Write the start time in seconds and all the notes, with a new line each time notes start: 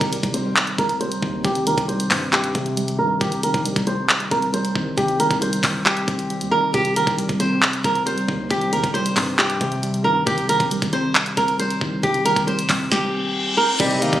Already playing: C3 D#3 A#4
0.01 C2, kick, closed hi-hat
0.12 G3, closed hi-hat
0.23 C2, kick, closed hi-hat
0.34 C4 C5, closed hi-hat
0.56 clap, closed hi-hat
0.67 closed hi-hat
0.78 C2 C4 A#4, kick, closed hi-hat
0.89 closed hi-hat
1.00 G3 C5, closed hi-hat
1.12 closed hi-hat
1.22 D#2 D#3, kick
1.44 C2 C3 G4, kick, closed hi-hat
1.55 closed hi-hat
1.67 D#2 D#3 A#4, closed hi-hat
1.78 C2, kick, closed hi-hat
1.88 G3 C5, closed hi-hat
2.00 closed hi-hat
2.10 G2 C4, kick, clap, open hi-hat
2.33 G4, clap, closed hi-hat
2.44 closed hi-hat
2.55 C3 C4, kick, closed hi-hat
2.66 closed hi-hat
2.77 G3, closed hi-hat
2.88 closed hi-hat
2.99 G2 D#3 A#4
3.21 C2 C3 G4, kick, closed hi-hat
3.32 closed hi-hat
3.43 D#3 A#4, closed hi-hat
3.54 A#1, kick, closed hi-hat
3.65 G3, closed hi-hat
3.76 C2, kick, closed hi-hat
3.87 C4 C5, closed hi-hat
4.09 clap, closed hi-hat
4.20 closed hi-hat
4.31 C2 C4 A#4, kick, closed hi-hat
4.42 closed hi-hat
4.53 G3 C5, closed hi-hat
4.65 closed hi-hat
4.75 C2 D#3, kick
4.97 C2 C3 G4, kick, closed hi-hat
5.08 closed hi-hat
5.20 D#3 A#4, closed hi-hat
5.31 C2, kick, closed hi-hat
5.41 G3 C5, closed hi-hat
5.53 closed hi-hat
5.63 C2 C4, kick, clap, open hi-hat
5.86 G4, clap, closed hi-hat
5.97 closed hi-hat
6.07 C2 C4, kick, closed hi-hat
6.19 closed hi-hat
6.30 G3, closed hi-hat
6.41 D#2, closed hi-hat
6.51 D#3 A#4
6.74 C2 C3 G4, kick, closed hi-hat
6.85 closed hi-hat
6.96 D#3 A#4, closed hi-hat
7.07 C2, kick, closed hi-hat
7.18 G3, closed hi-hat
7.29 C2, kick, closed hi-hat
7.40 C4 C5, closed hi-hat
7.62 clap, closed hi-hat
7.73 closed hi-hat
7.84 C2 C4 A#4, kick, closed hi-hat
7.95 closed hi-hat
8.06 G3 C5, closed hi-hat
8.18 closed hi-hat
8.28 D#2 D#3, kick
8.50 C2 C3 G4, kick, closed hi-hat
8.61 closed hi-hat
8.73 D#2 D#3 A#4, closed hi-hat
8.84 C2, kick, closed hi-hat
8.94 G3 C5, closed hi-hat
9.06 closed hi-hat
9.16 G2 C4, kick, clap, open hi-hat
9.39 G4, clap, closed hi-hat
9.50 closed hi-hat
9.61 C3 C4, kick, closed hi-hat
9.72 closed hi-hat
9.83 G3, closed hi-hat
9.94 closed hi-hat
10.04 G2 D#3 A#4
10.26 C2 C3 G4, kick, closed hi-hat
10.38 closed hi-hat
10.49 D#3 A#4, closed hi-hat
10.60 A#1, kick, closed hi-hat
10.71 G3, closed hi-hat
10.82 C2, kick, closed hi-hat
10.93 C4 C5, closed hi-hat
11.15 clap, closed hi-hat
11.26 closed hi-hat
11.37 C2 C4 A#4, kick, closed hi-hat
11.48 closed hi-hat
11.59 G3 C5, closed hi-hat
11.70 closed hi-hat
11.81 C2 D#3, kick
12.03 C2 C3 G4, kick, closed hi-hat
12.14 closed hi-hat
12.25 D#3 A#4, closed hi-hat
12.36 C2, kick, closed hi-hat
12.47 G3 C5, closed hi-hat
12.59 closed hi-hat
12.69 C2 C4, kick, clap, open hi-hat
12.91 G4, kick, snare, reverse cymbal
13.57 A#4
13.80 C2 C3 G3 D#4, kick, closed hi-hat, crash, impact
13.91 closed hi-hat
14.02 D#3 A#3, closed hi-hat
14.13 C2, kick, closed hi-hat